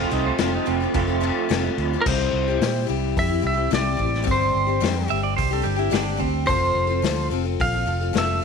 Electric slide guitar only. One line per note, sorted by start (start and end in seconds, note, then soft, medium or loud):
0.00 0.10 F4 medium
0.13 0.25 D#4 medium
0.27 0.39 C5 medium
0.41 0.53 F4 medium
0.55 0.67 D#4 medium
0.67 1.74 C4 medium
5.10 5.23 E5 medium
5.23 5.36 D5 medium
5.37 5.50 C5 medium
5.53 5.66 A4 medium
5.64 5.78 G4 medium
5.79 5.93 E4 medium
5.93 6.20 D4 medium
6.20 6.47 C4 medium